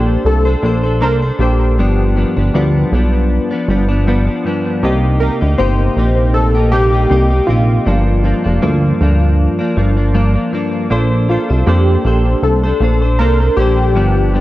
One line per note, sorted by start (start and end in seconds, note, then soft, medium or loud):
0.00 0.17 A#1 loud
0.00 0.46 A#3 medium
0.00 0.46 D4 medium
0.00 0.28 G4 medium
0.00 0.46 A4 medium
0.00 0.44 C5 medium
0.25 0.55 C2 medium
0.25 1.04 A4 medium
0.45 0.62 D4 soft
0.45 0.63 A4 soft
0.45 0.63 C5 medium
0.62 1.02 A#1 medium
0.62 0.84 A#3 soft
0.62 0.84 D4 soft
0.62 0.84 A4 soft
0.62 0.82 C5 medium
0.83 1.01 D4 soft
0.83 1.01 A4 soft
0.83 1.01 C5 soft
1.01 1.32 C2 medium
1.01 1.22 A#3 medium
1.01 1.23 D4 medium
1.01 1.23 A4 medium
1.01 1.16 A#4 loud
1.01 1.21 C5 medium
1.22 1.39 D4 soft
1.22 1.40 A4 soft
1.22 1.39 C5 soft
1.39 1.79 A#1 medium
1.39 1.77 A#3 medium
1.39 1.78 D4 medium
1.39 2.88 G4 medium
1.39 1.78 A4 medium
1.39 1.79 C5 medium
1.78 2.25 G1 loud
1.78 2.14 G2 medium
1.78 2.15 F3 medium
1.78 2.16 B3 medium
1.78 2.17 D4 medium
2.15 2.36 G2 medium
2.15 2.37 F3 medium
2.15 2.37 B3 medium
2.15 2.35 D4 medium
2.37 2.50 G1 medium
2.37 2.53 F3 soft
2.37 2.54 B3 soft
2.37 2.54 D4 soft
2.54 2.84 D2 loud
2.54 2.91 G2 medium
2.54 2.92 F3 medium
2.54 2.93 B3 medium
2.54 2.93 D4 loud
2.92 3.39 B1 medium
2.92 3.51 G2 medium
2.92 3.51 F3 medium
2.92 3.51 B3 medium
2.92 3.50 D4 medium
3.51 3.68 F3 soft
3.51 3.69 B3 medium
3.51 3.68 D4 medium
3.68 4.29 G1 medium
3.68 3.89 G2 medium
3.68 3.90 F3 soft
3.68 3.89 B3 medium
3.68 3.87 D4 medium
3.89 4.06 F3 soft
3.89 4.07 B3 soft
3.89 4.06 D4 medium
4.07 4.27 G2 medium
4.07 4.28 F3 medium
4.07 4.27 B3 medium
4.07 4.26 D4 medium
4.27 4.44 F3 soft
4.27 4.45 B3 medium
4.27 4.44 D4 medium
4.44 4.82 G2 medium
4.44 4.83 F3 medium
4.44 4.83 B3 medium
4.44 4.84 D4 medium
4.83 5.30 C2 loud
4.83 5.19 C3 medium
4.83 5.20 A#3 medium
4.83 5.21 D#4 medium
4.83 5.22 G4 medium
5.20 5.41 C3 medium
5.20 5.42 A#3 medium
5.20 5.42 D#4 medium
5.20 5.40 G4 medium
5.20 5.34 A#4 medium
5.41 5.55 D2 medium
5.41 5.57 A#3 soft
5.41 5.58 D#4 soft
5.41 5.58 G4 soft
5.58 5.89 G1 medium
5.58 5.95 C3 medium
5.58 5.96 A#3 medium
5.58 5.97 D#4 medium
5.58 5.97 G4 medium
5.58 6.37 C5 medium
5.96 7.07 A#1 medium
5.96 6.55 C3 medium
5.96 6.56 A#3 medium
5.96 6.55 D#4 medium
5.96 6.54 G4 medium
6.34 6.73 A4 medium
6.55 6.72 A#3 soft
6.55 6.73 D#4 soft
6.55 6.72 G4 soft
6.72 6.93 C3 medium
6.72 6.94 A#3 medium
6.72 6.93 D#4 soft
6.72 7.50 G4 medium
6.72 6.91 G4 medium
6.92 7.10 A#3 soft
6.92 7.10 D#4 soft
6.92 7.10 G4 soft
7.10 7.41 C2 medium
7.10 7.31 C3 medium
7.10 7.32 A#3 medium
7.10 7.31 D#4 medium
7.10 7.29 G4 medium
7.30 7.47 A#3 soft
7.30 7.48 D#4 soft
7.30 7.48 G4 soft
7.47 7.79 A#1 medium
7.47 7.86 C3 medium
7.47 7.86 A#3 medium
7.47 7.87 D#4 medium
7.47 9.72 F4 medium
7.47 7.87 G4 medium
7.86 8.34 G1 loud
7.86 8.22 G2 medium
7.86 8.23 F3 medium
7.86 8.24 A#3 medium
7.86 8.25 D4 medium
8.23 8.45 G2 medium
8.23 8.45 F3 medium
8.23 8.44 A#3 medium
8.23 8.43 D4 medium
8.44 8.59 F1 medium
8.44 8.61 F3 soft
8.44 8.62 A#3 soft
8.44 8.62 D4 medium
8.62 8.93 D2 medium
8.62 8.99 G2 medium
8.62 9.00 F3 medium
8.62 9.01 A#3 loud
8.62 9.01 D4 medium
9.00 9.48 D2 medium
9.00 9.59 G2 medium
9.00 9.60 F3 medium
9.00 9.59 A#3 medium
9.00 9.58 D4 medium
9.59 9.76 F3 soft
9.59 9.77 A#3 medium
9.59 9.76 D4 medium
9.76 10.38 G1 medium
9.76 9.97 G2 medium
9.76 9.98 F3 medium
9.76 9.97 A#3 medium
9.76 9.96 D4 medium
9.97 10.13 F3 soft
9.97 10.14 A#3 soft
9.97 10.14 D4 medium
10.14 10.35 G2 medium
10.14 10.36 F3 medium
10.14 10.34 A#3 medium
10.14 10.33 D4 medium
10.34 10.52 F3 soft
10.34 10.53 A#3 medium
10.34 10.52 D4 medium
10.52 10.90 G2 medium
10.52 10.90 F3 medium
10.52 10.89 A#3 medium
10.52 10.90 D4 medium
10.90 11.38 A#1 loud
10.90 11.27 A#3 medium
10.90 11.29 D4 medium
10.90 11.29 A4 medium
10.90 11.29 C5 medium
11.29 11.50 A#3 medium
11.29 11.50 D4 medium
11.29 11.68 F4 medium
11.29 11.50 A4 medium
11.29 11.49 C5 medium
11.50 11.64 C2 medium
11.50 11.66 D4 soft
11.50 11.67 A4 soft
11.50 11.67 C5 soft
11.67 11.97 F2 medium
11.67 12.03 A#3 medium
11.67 12.04 D4 medium
11.67 12.45 G4 medium
11.67 12.05 A4 medium
11.67 12.06 C5 medium
12.04 12.35 A#1 medium
12.04 12.63 A#3 soft
12.04 12.64 D4 medium
12.04 12.64 A4 medium
12.04 12.63 C5 medium
12.43 12.73 C2 medium
12.43 13.21 A4 medium
12.64 12.81 D4 soft
12.64 12.82 A4 soft
12.64 12.81 C5 soft
12.81 13.21 A#1 medium
12.81 13.02 A#3 soft
12.81 13.02 D4 medium
12.81 13.02 A4 medium
12.81 13.01 C5 medium
13.02 13.19 D4 soft
13.02 13.20 A4 soft
13.02 13.19 C5 medium
13.19 13.50 C2 medium
13.19 13.40 A#3 medium
13.19 13.41 D4 medium
13.19 13.40 A4 medium
13.19 13.58 A#4 medium
13.19 13.39 C5 medium
13.40 13.58 D4 soft
13.40 13.58 A4 soft
13.40 13.57 C5 medium
13.57 13.96 A#1 medium
13.57 13.95 A#3 soft
13.57 13.95 D4 medium
13.57 14.40 G4 medium
13.57 13.96 A4 medium
13.57 13.97 C5 medium
13.95 14.40 G1 loud
13.95 14.32 G2 medium
13.95 14.33 F3 medium
13.95 14.34 B3 medium
13.95 14.34 D4 medium
14.33 14.40 G2 medium
14.33 14.40 F3 soft
14.33 14.40 B3 medium
14.33 14.40 D4 medium